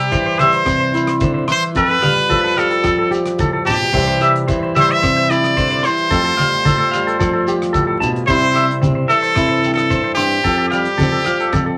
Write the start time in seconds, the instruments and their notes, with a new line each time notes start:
Already playing: nylon-string guitar C3 G3, muted trumpet G4
0.12 nylon-string guitar E3, clean electric guitar C5, kick, closed hi-hat, high conga, shekere
0.26 clean electric guitar C5
0.39 nylon-string guitar G3, muted trumpet C5, clean electric guitar E5, cross-stick, closed hi-hat, high conga, shekere
0.53 clean electric guitar C5, closed hi-hat
0.65 fingered electric bass C3, clean electric guitar C5, muted nylon-string guitar stroke, kick, cross-stick, closed hi-hat, muted conga, shekere
0.80 clean electric guitar C5
0.94 nylon-string guitar E4, closed hi-hat, shekere
1.07 cross-stick, closed hi-hat
1.20 nylon-string guitar D3, clean electric guitar C5, kick, closed hi-hat, high conga, shekere
1.34 clean electric guitar C5
1.48 nylon-string guitar E3, muted trumpet C5, clean electric guitar C6, cross-stick, closed hi-hat, muted conga, shekere
1.62 closed hi-hat
1.75 fingered electric bass F2, nylon-string guitar F2, clean electric guitar A4, muted trumpet B4, kick, closed hi-hat, muted conga, shekere
1.90 clean electric guitar A4
2.02 nylon-string guitar G3, clean electric guitar F5, cross-stick, closed hi-hat, muted conga, high conga, shekere
2.17 closed hi-hat
2.29 nylon-string guitar F3, clean electric guitar A4, kick, closed hi-hat, high conga, shekere
2.44 clean electric guitar A4
2.57 nylon-string guitar G3, muted trumpet A4, clean electric guitar F5, cross-stick, closed hi-hat, shekere
2.71 clean electric guitar A4, closed hi-hat
2.84 fingered electric bass F3, nylon-string guitar C4, clean electric guitar A4, kick, cross-stick, closed hi-hat, muted conga, shekere
2.98 clean electric guitar A4
3.11 nylon-string guitar G4, closed hi-hat, shekere
3.26 cross-stick, closed hi-hat
3.38 nylon-string guitar A2, clean electric guitar A4, kick, closed hi-hat, high conga, shekere
3.53 clean electric guitar A4
3.65 nylon-string guitar B2, muted trumpet G4, clean electric guitar A5, closed hi-hat, muted conga, low conga, shekere
3.80 closed hi-hat
3.93 fingered electric bass C2, nylon-string guitar C3 E3 G3 C4, transistor combo organ C4 E4 G4, clean electric guitar C5, muted nylon-string guitar stroke, kick, closed hi-hat, muted conga, shekere
4.07 clean electric guitar C5
4.21 nylon-string guitar G3, clean electric guitar E5, cross-stick, closed hi-hat, muted conga, shekere
4.36 closed hi-hat
4.48 nylon-string guitar E3, clean electric guitar C5, kick, closed hi-hat, high conga, shekere
4.63 clean electric guitar C5
4.75 nylon-string guitar G3, clean electric guitar E5, cross-stick, closed hi-hat, high conga, shekere
4.80 muted trumpet C5
4.90 clean electric guitar C5, muted trumpet E5, closed hi-hat
5.02 fingered electric bass C3, clean electric guitar C5, muted nylon-string guitar stroke, kick, cross-stick, closed hi-hat, shekere
5.16 clean electric guitar C5
5.30 nylon-string guitar E4, muted trumpet D5, closed hi-hat, shekere
5.44 cross-stick, closed hi-hat
5.57 nylon-string guitar D3, clean electric guitar C5, kick, closed hi-hat, high conga, shekere
5.71 clean electric guitar C5
5.83 nylon-string guitar E3, muted trumpet C5, clean electric guitar C6, cross-stick, closed hi-hat, muted conga, shekere
5.97 closed hi-hat
6.11 fingered electric bass F2, nylon-string guitar F2, transistor combo organ A3 F4, clean electric guitar A4, kick, closed hi-hat, muted conga, shekere
6.24 clean electric guitar A4
6.37 nylon-string guitar G3, clean electric guitar F5, cross-stick, closed hi-hat, muted conga, high conga, shekere
6.53 closed hi-hat
6.65 nylon-string guitar F3, clean electric guitar A4, kick, closed hi-hat, high conga, shekere
6.78 clean electric guitar A4
6.91 nylon-string guitar G3, clean electric guitar F5, cross-stick, closed hi-hat, shekere
7.07 clean electric guitar A4, closed hi-hat
7.19 fingered electric bass F3, nylon-string guitar C4, clean electric guitar A4, kick, cross-stick, closed hi-hat, muted conga, shekere
7.33 clean electric guitar A4
7.48 nylon-string guitar G4, closed hi-hat, shekere
7.62 cross-stick, closed hi-hat
7.73 nylon-string guitar A2, clean electric guitar A4, kick, closed hi-hat, high conga, shekere
7.87 clean electric guitar A4
8.00 nylon-string guitar B2, clean electric guitar A5, closed hi-hat, muted conga, low conga, shekere
8.16 closed hi-hat
8.27 nylon-string guitar C3 G3 C4 E4, fingered electric bass C3, muted trumpet C5, clean electric guitar C5, kick, closed hi-hat, muted conga, shekere
8.41 clean electric guitar C5
8.54 nylon-string guitar G3, clean electric guitar E5, cross-stick, closed hi-hat
8.71 closed hi-hat
8.81 fingered electric bass C3, nylon-string guitar C4, clean electric guitar C5, kick, closed hi-hat, high conga, shekere
8.95 clean electric guitar C5
9.08 nylon-string guitar E3, muted trumpet A4, clean electric guitar E5, cross-stick, closed hi-hat, shekere
9.22 clean electric guitar C5, closed hi-hat
9.35 fingered electric bass C3, nylon-string guitar E4, clean electric guitar C5, kick, cross-stick, closed hi-hat, muted conga, shekere
9.49 clean electric guitar C5
9.64 nylon-string guitar G2, closed hi-hat, muted conga, shekere
9.73 muted trumpet A4
9.77 cross-stick, closed hi-hat
9.90 clean electric guitar C5, kick, closed hi-hat, high conga, shekere
10.04 clean electric guitar C5
10.14 fingered electric bass G2, muted trumpet G4, clean electric guitar C6, cross-stick, closed hi-hat, muted conga
10.18 nylon-string guitar C4, shekere
10.31 closed hi-hat
10.44 fingered electric bass F2, nylon-string guitar F2 C4, clean electric guitar A4, muted nylon-string guitar stroke, kick, closed hi-hat, muted conga, shekere
10.58 clean electric guitar A4
10.68 muted trumpet G4, clean electric guitar F5, cross-stick, closed hi-hat
10.73 nylon-string guitar G3, shekere
10.85 closed hi-hat
10.98 fingered electric bass F2, nylon-string guitar C4, clean electric guitar A4, kick, closed hi-hat, high conga, shekere
11.12 clean electric guitar A4
11.25 nylon-string guitar F3, clean electric guitar F5, cross-stick, closed hi-hat, shekere
11.40 clean electric guitar A4, closed hi-hat
11.53 fingered electric bass F2, nylon-string guitar C4, clean electric guitar A4, kick, cross-stick, closed hi-hat, muted conga, high conga, shekere
11.66 clean electric guitar A4